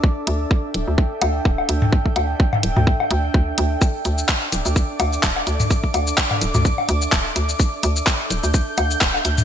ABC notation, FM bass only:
X:1
M:4/4
L:1/16
Q:"Swing 16ths" 1/4=127
K:Cmix
V:1 name="FM bass" clef=bass
z2 D,,2 z2 D,,, D,,2 z D,,2 D,,,2 D,,2 | z2 D,,2 z2 D,,, D,,2 z D,,2 D,,2 D,,2 | z2 D,,2 z2 D,,, D,,2 z D,,2 D,,,2 D,,2 | z2 D,,2 z2 D,,, D,,2 z D,,2 D,,,2 D,,2 |
z2 D,,2 z2 D,,, D,,2 z D,,2 D,,,2 D,,2 |]